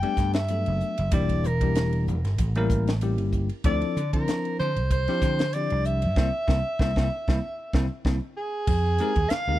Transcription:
0.00 0.36 G3 medium
0.00 0.36 A3 medium
0.00 0.37 B3 medium
0.00 0.37 D4 medium
0.00 0.37 G4 medium
0.00 0.33 G5 medium
0.00 ride medium
0.17 0.64 G2 medium
0.17 kick medium
0.17 snare soft
0.17 hi-hat pedal medium
0.33 1.15 E5 medium
0.33 snare loud
0.33 ride medium
0.48 0.95 F#3 medium
0.48 0.96 A3 medium
0.48 0.96 B3 soft
0.48 0.96 D4 medium
0.48 0.96 A4 medium
0.48 hi-hat pedal medium
0.48 ride medium
0.66 0.81 F#1 medium
0.66 ride medium
0.80 hi-hat pedal medium
0.97 1.11 F#1 medium
0.97 ride medium
1.11 1.42 E1 medium
1.11 1.46 G3 medium
1.11 1.46 A#3 medium
1.11 1.46 D4 medium
1.11 1.46 E4 medium
1.11 1.46 G4 medium
1.11 1.48 D5 medium
1.11 kick loud
1.11 hi-hat pedal medium
1.11 ride medium
1.29 kick medium
1.29 ride medium
1.43 2.03 E1 medium
1.43 2.08 A#4 medium
1.43 hi-hat pedal medium
1.61 2.16 G3 medium
1.61 2.17 A#3 medium
1.61 2.17 D4 medium
1.61 2.17 E4 medium
1.61 2.17 G4 medium
1.61 kick medium
1.61 ride medium
1.75 snare medium
1.75 hi-hat pedal medium
1.75 ride medium
1.93 ride medium
2.07 2.24 E1 medium
2.07 hi-hat pedal medium
2.24 2.38 G1 medium
2.24 snare soft
2.24 ride medium
2.38 3.19 A1 medium
2.38 2.47 E4 soft
2.38 2.48 A4 soft
2.38 kick medium
2.38 hi-hat pedal medium
2.38 ride medium
2.55 2.89 G3 loud
2.55 2.89 A#3 medium
2.55 2.89 C#4 medium
2.55 2.90 E4 medium
2.55 2.90 A#4 loud
2.55 ride medium
2.70 kick medium
2.70 hi-hat pedal medium
2.87 snare loud
2.87 ride medium
3.01 3.48 G3 medium
3.01 3.48 A#3 medium
3.01 3.48 C#4 medium
3.01 3.48 E4 medium
3.01 3.48 G4 medium
3.01 hi-hat pedal medium
3.01 ride medium
3.18 3.49 G1 medium
3.18 ride medium
3.32 kick medium
3.32 hi-hat pedal medium
3.49 ride medium
3.64 3.81 D2 medium
3.64 3.98 F3 medium
3.64 3.98 C4 medium
3.64 3.99 D4 medium
3.64 3.99 E4 medium
3.64 3.99 A4 medium
3.64 4.10 D5 medium
3.64 kick loud
3.64 hi-hat pedal medium
3.64 ride medium
3.82 ride medium
3.97 4.26 D3 medium
3.97 hi-hat pedal medium
4.13 4.68 F3 medium
4.13 4.68 C4 medium
4.13 4.68 D4 medium
4.13 4.68 E4 medium
4.13 4.56 A#4 medium
4.13 4.69 C5 medium
4.13 kick medium
4.13 ride medium
4.28 snare medium
4.28 hi-hat pedal medium
4.28 ride medium
4.45 ride medium
4.59 4.78 D3 medium
4.59 4.89 C5 medium
4.59 hi-hat pedal medium
4.76 5.06 C2 medium
4.76 ride medium
4.91 4.99 E4 soft
4.91 5.00 G4 soft
4.91 5.55 C5 medium
4.91 kick medium
4.91 hi-hat pedal medium
4.91 ride medium
5.08 5.41 F3 medium
5.08 5.41 C4 medium
5.08 5.41 D4 medium
5.08 5.42 E4 medium
5.08 5.42 G4 medium
5.08 snare soft
5.08 ride medium
5.22 5.68 D3 medium
5.22 kick medium
5.22 snare soft
5.22 hi-hat pedal medium
5.39 snare loud
5.39 ride medium
5.53 6.00 F3 medium
5.53 6.00 C4 medium
5.53 6.00 D4 medium
5.53 6.00 E4 medium
5.53 6.00 G4 medium
5.53 5.87 D5 medium
5.53 hi-hat pedal medium
5.53 ride medium
5.70 6.06 C2 medium
5.70 ride medium
5.85 8.06 E5 medium
5.85 hi-hat pedal medium
6.02 6.16 G2 medium
6.02 ride medium
6.16 6.29 C2 medium
6.16 6.28 A#3 medium
6.16 6.28 C4 medium
6.16 6.28 E4 medium
6.16 kick medium
6.16 snare medium
6.48 6.61 C2 medium
6.48 6.59 A#3 medium
6.48 6.59 C4 medium
6.48 6.59 E4 medium
6.48 kick medium
6.48 snare medium
6.79 6.92 C2 medium
6.79 6.91 A#3 medium
6.79 6.91 C4 medium
6.79 6.91 E4 medium
6.79 kick medium
6.79 snare medium
6.96 7.07 C2 medium
6.96 7.06 A#3 medium
6.96 7.06 C4 medium
6.96 7.07 E4 medium
6.96 kick medium
6.96 snare medium
7.28 7.39 C2 medium
7.28 7.38 A#3 medium
7.28 7.38 C4 medium
7.28 7.38 E4 medium
7.28 kick medium
7.28 snare medium
7.73 7.86 C2 medium
7.73 7.85 A#3 medium
7.73 7.85 C4 medium
7.73 7.85 E4 medium
7.73 kick medium
7.73 snare medium
8.05 8.18 C2 medium
8.05 8.17 A#3 medium
8.05 8.17 C4 medium
8.05 8.17 E4 medium
8.05 kick medium
8.05 snare medium
8.37 9.31 G#4 medium
8.67 8.98 F2 medium
8.67 kick loud
8.67 crash loud
8.98 9.12 G#3 medium
8.98 9.12 C4 medium
8.98 9.12 D#4 medium
8.98 9.12 G4 medium
8.98 9.13 A#4 medium
8.98 hi-hat pedal medium
8.98 ride medium
9.16 9.30 D#2 medium
9.16 kick medium
9.16 ride soft
9.30 9.59 F5 loud
9.30 muted slap bass stroke soft
9.30 snare loud
9.30 hi-hat pedal medium
9.30 ride medium
9.47 9.59 D#2 medium
9.47 9.59 G#3 medium
9.47 9.59 C4 medium
9.47 9.59 D#4 medium
9.47 9.59 G4 medium
9.47 9.59 A#4 medium

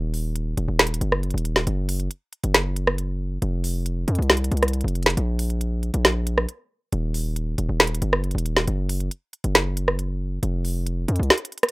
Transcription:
0.00 0.55 D#1 loud
0.14 open hi-hat medium
0.36 closed hi-hat medium
0.57 0.68 D#1 loud
0.57 closed hi-hat medium
0.68 1.00 D#1 loud
0.79 snare loud
0.79 closed hi-hat soft
0.87 closed hi-hat medium
0.94 closed hi-hat medium
1.01 1.33 F#1 loud
1.01 closed hi-hat medium
1.12 cross-stick medium
1.23 closed hi-hat soft
1.30 1.66 D#1 loud
1.30 closed hi-hat medium
1.38 closed hi-hat medium
1.45 closed hi-hat medium
1.56 snare medium
1.67 2.09 F#1 loud
1.67 closed hi-hat medium
1.89 closed hi-hat medium
1.89 open hi-hat medium
2.00 closed hi-hat soft
2.11 closed hi-hat medium
2.33 closed hi-hat soft
2.44 3.38 F#1 loud
2.44 closed hi-hat medium
2.54 snare loud
2.54 closed hi-hat medium
2.76 closed hi-hat medium
2.87 cross-stick loud
2.98 closed hi-hat medium
3.42 4.05 F1 loud
3.42 closed hi-hat medium
3.64 open hi-hat medium
3.86 closed hi-hat medium
4.08 4.18 F2 loud
4.08 closed hi-hat medium
4.15 4.50 C2 loud
4.15 closed hi-hat medium
4.22 closed hi-hat soft
4.30 snare loud
4.30 closed hi-hat soft
4.37 closed hi-hat medium
4.44 closed hi-hat medium
4.51 4.83 C2 loud
4.51 closed hi-hat soft
4.57 closed hi-hat medium
4.63 cross-stick medium
4.63 closed hi-hat medium
4.68 closed hi-hat medium
4.73 closed hi-hat medium
4.81 5.16 F1 loud
4.81 closed hi-hat medium
4.88 closed hi-hat medium
4.95 closed hi-hat medium
5.03 snare loud
5.03 closed hi-hat medium
5.10 closed hi-hat medium
5.17 5.91 A#1 loud
5.17 closed hi-hat medium
5.39 closed hi-hat medium
5.39 open hi-hat medium
5.50 closed hi-hat soft
5.61 closed hi-hat medium
5.83 closed hi-hat soft
5.94 6.46 A#1 loud
5.94 closed hi-hat medium
6.05 snare loud
6.05 closed hi-hat medium
6.27 closed hi-hat medium
6.38 cross-stick medium
6.49 closed hi-hat medium
6.92 7.56 D#1 loud
6.92 closed hi-hat medium
7.14 open hi-hat medium
7.36 closed hi-hat medium
7.58 7.69 D#1 loud
7.58 closed hi-hat medium
7.69 8.01 D#1 loud
7.80 snare loud
7.80 closed hi-hat soft
7.87 closed hi-hat medium
7.95 closed hi-hat medium
8.02 8.33 F#1 loud
8.02 closed hi-hat medium
8.13 cross-stick loud
8.24 closed hi-hat soft
8.31 8.66 D#1 loud
8.31 closed hi-hat medium
8.38 closed hi-hat medium
8.46 closed hi-hat medium
8.57 snare medium
8.68 9.10 F#1 loud
8.68 closed hi-hat medium
8.89 closed hi-hat medium
8.89 open hi-hat medium
9.00 closed hi-hat soft
9.11 closed hi-hat medium
9.33 closed hi-hat soft
9.44 10.39 F#1 loud
9.44 closed hi-hat medium
9.55 snare loud
9.55 closed hi-hat medium
9.77 closed hi-hat medium
9.88 cross-stick medium
9.99 closed hi-hat medium
10.43 11.06 F1 loud
10.43 closed hi-hat medium
10.65 open hi-hat medium
10.87 closed hi-hat medium
11.08 11.19 F2 loud
11.08 closed hi-hat medium
11.16 11.30 C2 loud
11.16 closed hi-hat medium
11.23 closed hi-hat soft
11.30 snare loud
11.30 closed hi-hat soft
11.38 closed hi-hat medium
11.45 closed hi-hat medium
11.52 closed hi-hat soft
11.58 closed hi-hat medium
11.63 cross-stick loud
11.63 closed hi-hat medium

